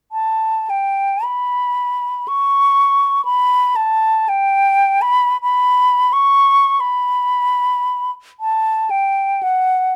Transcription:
0, 0, Header, 1, 2, 480
1, 0, Start_track
1, 0, Tempo, 1125704
1, 53, Time_signature, 3, 2, 24, 8
1, 532, Tempo, 1013514
1, 1972, Tempo, 1136364
1, 2452, Tempo, 1388889
1, 2932, Tempo, 1081081
1, 3412, Tempo, 1036269
1, 4368, End_track
2, 0, Start_track
2, 0, Title_t, "Flute"
2, 0, Program_c, 0, 73
2, 51, Note_on_c, 0, 81, 47
2, 297, Note_on_c, 0, 79, 37
2, 304, Note_off_c, 0, 81, 0
2, 529, Note_on_c, 0, 83, 50
2, 536, Note_off_c, 0, 79, 0
2, 1021, Note_on_c, 0, 85, 56
2, 1029, Note_off_c, 0, 83, 0
2, 1478, Note_off_c, 0, 85, 0
2, 1480, Note_on_c, 0, 83, 59
2, 1721, Note_on_c, 0, 81, 59
2, 1728, Note_off_c, 0, 83, 0
2, 1971, Note_on_c, 0, 79, 65
2, 1978, Note_off_c, 0, 81, 0
2, 2280, Note_on_c, 0, 83, 72
2, 2286, Note_off_c, 0, 79, 0
2, 2447, Note_off_c, 0, 83, 0
2, 2449, Note_on_c, 0, 83, 59
2, 2695, Note_on_c, 0, 85, 63
2, 2701, Note_off_c, 0, 83, 0
2, 2928, Note_on_c, 0, 83, 52
2, 2934, Note_off_c, 0, 85, 0
2, 3513, Note_off_c, 0, 83, 0
2, 3646, Note_on_c, 0, 81, 56
2, 3880, Note_on_c, 0, 79, 54
2, 3887, Note_off_c, 0, 81, 0
2, 4123, Note_on_c, 0, 78, 53
2, 4130, Note_off_c, 0, 79, 0
2, 4368, Note_off_c, 0, 78, 0
2, 4368, End_track
0, 0, End_of_file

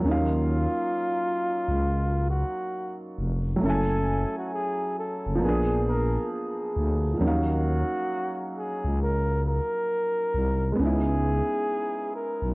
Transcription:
0, 0, Header, 1, 4, 480
1, 0, Start_track
1, 0, Key_signature, -6, "minor"
1, 0, Tempo, 895522
1, 25, Time_signature, 4, 2, 24, 8
1, 3865, Key_signature, -6, "minor"
1, 6722, End_track
2, 0, Start_track
2, 0, Title_t, "Flugelhorn"
2, 0, Program_c, 0, 56
2, 36, Note_on_c, 0, 65, 109
2, 1235, Note_on_c, 0, 66, 80
2, 1243, Note_off_c, 0, 65, 0
2, 1603, Note_off_c, 0, 66, 0
2, 1955, Note_on_c, 0, 69, 108
2, 2323, Note_off_c, 0, 69, 0
2, 2348, Note_on_c, 0, 66, 74
2, 2421, Note_off_c, 0, 66, 0
2, 2435, Note_on_c, 0, 68, 89
2, 2648, Note_off_c, 0, 68, 0
2, 2674, Note_on_c, 0, 69, 73
2, 2888, Note_off_c, 0, 69, 0
2, 2913, Note_on_c, 0, 68, 91
2, 3127, Note_off_c, 0, 68, 0
2, 3155, Note_on_c, 0, 70, 86
2, 3368, Note_off_c, 0, 70, 0
2, 3876, Note_on_c, 0, 66, 98
2, 4569, Note_off_c, 0, 66, 0
2, 4595, Note_on_c, 0, 68, 74
2, 4836, Note_on_c, 0, 70, 76
2, 4844, Note_off_c, 0, 68, 0
2, 5049, Note_off_c, 0, 70, 0
2, 5077, Note_on_c, 0, 70, 96
2, 5769, Note_off_c, 0, 70, 0
2, 5798, Note_on_c, 0, 68, 103
2, 6514, Note_on_c, 0, 70, 74
2, 6522, Note_off_c, 0, 68, 0
2, 6722, Note_off_c, 0, 70, 0
2, 6722, End_track
3, 0, Start_track
3, 0, Title_t, "Upright piano"
3, 0, Program_c, 1, 0
3, 0, Control_c, 1, 64, 127
3, 0, Note_on_c, 1, 54, 62
3, 6, Note_on_c, 1, 58, 57
3, 24, Note_on_c, 1, 61, 62
3, 31, Control_c, 1, 64, 0
3, 42, Note_on_c, 1, 63, 59
3, 60, Note_on_c, 1, 77, 71
3, 120, Control_c, 1, 64, 127
3, 1901, Note_off_c, 1, 54, 0
3, 1909, Note_on_c, 1, 54, 67
3, 1914, Note_off_c, 1, 58, 0
3, 1923, Note_off_c, 1, 61, 0
3, 1928, Note_on_c, 1, 57, 58
3, 1932, Note_off_c, 1, 63, 0
3, 1941, Note_off_c, 1, 77, 0
3, 1946, Note_on_c, 1, 61, 55
3, 1952, Control_c, 1, 64, 0
3, 1963, Note_on_c, 1, 64, 59
3, 1980, Note_on_c, 1, 80, 71
3, 2036, Control_c, 1, 64, 127
3, 2867, Note_off_c, 1, 54, 0
3, 2869, Note_on_c, 1, 53, 65
3, 2877, Note_off_c, 1, 57, 0
3, 2886, Note_off_c, 1, 61, 0
3, 2887, Note_on_c, 1, 58, 61
3, 2895, Note_off_c, 1, 64, 0
3, 2904, Note_off_c, 1, 80, 0
3, 2905, Note_on_c, 1, 59, 63
3, 2911, Control_c, 1, 64, 0
3, 2923, Note_on_c, 1, 62, 62
3, 2940, Note_on_c, 1, 68, 71
3, 2999, Control_c, 1, 64, 127
3, 3820, Note_off_c, 1, 53, 0
3, 3828, Note_on_c, 1, 53, 49
3, 3836, Note_off_c, 1, 58, 0
3, 3846, Note_off_c, 1, 59, 0
3, 3846, Note_on_c, 1, 58, 56
3, 3855, Note_off_c, 1, 62, 0
3, 3863, Note_on_c, 1, 54, 61
3, 3864, Note_off_c, 1, 68, 0
3, 3864, Note_on_c, 1, 61, 55
3, 3872, Control_c, 1, 64, 0
3, 3882, Note_on_c, 1, 63, 61
3, 3891, Note_off_c, 1, 53, 0
3, 3900, Note_on_c, 1, 77, 65
3, 3964, Control_c, 1, 64, 127
3, 5746, Note_on_c, 1, 56, 62
3, 5754, Note_off_c, 1, 58, 0
3, 5762, Note_off_c, 1, 54, 0
3, 5763, Note_off_c, 1, 61, 0
3, 5765, Note_on_c, 1, 59, 57
3, 5772, Note_off_c, 1, 63, 0
3, 5781, Note_off_c, 1, 77, 0
3, 5782, Note_on_c, 1, 61, 59
3, 5791, Control_c, 1, 64, 0
3, 5800, Note_on_c, 1, 63, 58
3, 5818, Note_on_c, 1, 64, 70
3, 5881, Control_c, 1, 64, 127
3, 6722, Note_off_c, 1, 56, 0
3, 6722, Note_off_c, 1, 59, 0
3, 6722, Note_off_c, 1, 61, 0
3, 6722, Note_off_c, 1, 63, 0
3, 6722, Note_off_c, 1, 64, 0
3, 6722, End_track
4, 0, Start_track
4, 0, Title_t, "FM bass"
4, 0, Program_c, 2, 39
4, 25, Note_on_c, 2, 39, 97
4, 359, Note_off_c, 2, 39, 0
4, 902, Note_on_c, 2, 37, 93
4, 1307, Note_off_c, 2, 37, 0
4, 1706, Note_on_c, 2, 29, 94
4, 1908, Note_off_c, 2, 29, 0
4, 1946, Note_on_c, 2, 30, 102
4, 2280, Note_off_c, 2, 30, 0
4, 2821, Note_on_c, 2, 30, 95
4, 2892, Note_off_c, 2, 30, 0
4, 2905, Note_on_c, 2, 34, 101
4, 3311, Note_off_c, 2, 34, 0
4, 3625, Note_on_c, 2, 38, 93
4, 3828, Note_off_c, 2, 38, 0
4, 3865, Note_on_c, 2, 39, 104
4, 4199, Note_off_c, 2, 39, 0
4, 4741, Note_on_c, 2, 37, 96
4, 5147, Note_off_c, 2, 37, 0
4, 5544, Note_on_c, 2, 36, 92
4, 5747, Note_off_c, 2, 36, 0
4, 5785, Note_on_c, 2, 37, 108
4, 6119, Note_off_c, 2, 37, 0
4, 6657, Note_on_c, 2, 35, 88
4, 6722, Note_off_c, 2, 35, 0
4, 6722, End_track
0, 0, End_of_file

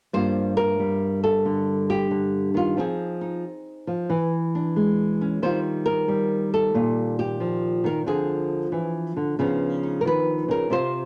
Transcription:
0, 0, Header, 1, 2, 480
1, 0, Start_track
1, 0, Key_signature, -2, "minor"
1, 0, Tempo, 660066
1, 96, Time_signature, 4, 2, 24, 8
1, 8038, End_track
2, 0, Start_track
2, 0, Title_t, "Nylon-string guitar"
2, 0, Program_c, 0, 24
2, 96, Note_on_c, 0, 43, 65
2, 101, Note_on_c, 0, 72, 97
2, 104, Note_on_c, 0, 55, 44
2, 110, Note_on_c, 0, 58, 45
2, 115, Note_on_c, 0, 65, 40
2, 411, Note_off_c, 0, 72, 0
2, 414, Note_on_c, 0, 70, 91
2, 569, Note_off_c, 0, 55, 0
2, 578, Note_on_c, 0, 55, 53
2, 894, Note_off_c, 0, 70, 0
2, 898, Note_on_c, 0, 69, 84
2, 1057, Note_on_c, 0, 50, 63
2, 1376, Note_off_c, 0, 69, 0
2, 1380, Note_on_c, 0, 67, 81
2, 1524, Note_off_c, 0, 50, 0
2, 1533, Note_on_c, 0, 50, 54
2, 1845, Note_off_c, 0, 50, 0
2, 1848, Note_on_c, 0, 51, 55
2, 1859, Note_off_c, 0, 65, 0
2, 1867, Note_on_c, 0, 65, 81
2, 1998, Note_off_c, 0, 55, 0
2, 2014, Note_off_c, 0, 51, 0
2, 2014, Note_on_c, 0, 53, 60
2, 2017, Note_off_c, 0, 43, 0
2, 2018, Note_off_c, 0, 58, 0
2, 2020, Note_off_c, 0, 67, 0
2, 2021, Note_on_c, 0, 60, 47
2, 2023, Note_off_c, 0, 65, 0
2, 2027, Note_on_c, 0, 63, 47
2, 2033, Note_on_c, 0, 68, 72
2, 2327, Note_off_c, 0, 63, 0
2, 2336, Note_on_c, 0, 63, 42
2, 2496, Note_off_c, 0, 53, 0
2, 2816, Note_on_c, 0, 53, 57
2, 2958, Note_off_c, 0, 63, 0
2, 2960, Note_off_c, 0, 60, 0
2, 2978, Note_off_c, 0, 53, 0
2, 2978, Note_on_c, 0, 52, 72
2, 3309, Note_on_c, 0, 62, 43
2, 3463, Note_on_c, 0, 56, 57
2, 3790, Note_on_c, 0, 61, 45
2, 3918, Note_off_c, 0, 52, 0
2, 3921, Note_off_c, 0, 56, 0
2, 3925, Note_off_c, 0, 61, 0
2, 3944, Note_off_c, 0, 62, 0
2, 3944, Note_off_c, 0, 68, 0
2, 3944, Note_on_c, 0, 51, 69
2, 3947, Note_on_c, 0, 72, 80
2, 3951, Note_on_c, 0, 55, 44
2, 3956, Note_on_c, 0, 60, 44
2, 3962, Note_on_c, 0, 65, 46
2, 4063, Note_off_c, 0, 72, 0
2, 4258, Note_on_c, 0, 70, 81
2, 4413, Note_off_c, 0, 55, 0
2, 4422, Note_on_c, 0, 55, 61
2, 4736, Note_off_c, 0, 70, 0
2, 4753, Note_on_c, 0, 69, 78
2, 4905, Note_on_c, 0, 46, 66
2, 4907, Note_off_c, 0, 65, 0
2, 4910, Note_on_c, 0, 65, 51
2, 5224, Note_off_c, 0, 69, 0
2, 5228, Note_on_c, 0, 67, 75
2, 5380, Note_off_c, 0, 55, 0
2, 5383, Note_on_c, 0, 53, 61
2, 5692, Note_off_c, 0, 51, 0
2, 5698, Note_off_c, 0, 53, 0
2, 5701, Note_on_c, 0, 51, 54
2, 5702, Note_off_c, 0, 67, 0
2, 5717, Note_on_c, 0, 70, 84
2, 5808, Note_off_c, 0, 70, 0
2, 5842, Note_off_c, 0, 46, 0
2, 5846, Note_off_c, 0, 60, 0
2, 5860, Note_off_c, 0, 51, 0
2, 5865, Note_on_c, 0, 50, 64
2, 5869, Note_on_c, 0, 53, 47
2, 5874, Note_on_c, 0, 68, 82
2, 5875, Note_on_c, 0, 60, 48
2, 6338, Note_off_c, 0, 50, 0
2, 6341, Note_on_c, 0, 52, 58
2, 6363, Note_off_c, 0, 65, 0
2, 6657, Note_off_c, 0, 52, 0
2, 6665, Note_on_c, 0, 50, 54
2, 6807, Note_off_c, 0, 60, 0
2, 6823, Note_off_c, 0, 50, 0
2, 6827, Note_on_c, 0, 49, 76
2, 6830, Note_off_c, 0, 53, 0
2, 6833, Note_on_c, 0, 53, 49
2, 6836, Note_on_c, 0, 59, 46
2, 6841, Note_on_c, 0, 63, 45
2, 7146, Note_off_c, 0, 63, 0
2, 7149, Note_on_c, 0, 63, 43
2, 7269, Note_off_c, 0, 68, 0
2, 7279, Note_on_c, 0, 70, 63
2, 7302, Note_off_c, 0, 49, 0
2, 7305, Note_off_c, 0, 70, 0
2, 7309, Note_on_c, 0, 51, 56
2, 7325, Note_on_c, 0, 71, 84
2, 7620, Note_off_c, 0, 51, 0
2, 7623, Note_on_c, 0, 49, 53
2, 7629, Note_off_c, 0, 71, 0
2, 7642, Note_on_c, 0, 70, 89
2, 7767, Note_off_c, 0, 59, 0
2, 7778, Note_off_c, 0, 49, 0
2, 7781, Note_on_c, 0, 48, 64
2, 7785, Note_off_c, 0, 53, 0
2, 7789, Note_on_c, 0, 60, 45
2, 7791, Note_off_c, 0, 70, 0
2, 7795, Note_on_c, 0, 65, 45
2, 7797, Note_off_c, 0, 63, 0
2, 7800, Note_on_c, 0, 72, 100
2, 8038, Note_off_c, 0, 48, 0
2, 8038, Note_off_c, 0, 60, 0
2, 8038, Note_off_c, 0, 65, 0
2, 8038, Note_off_c, 0, 72, 0
2, 8038, End_track
0, 0, End_of_file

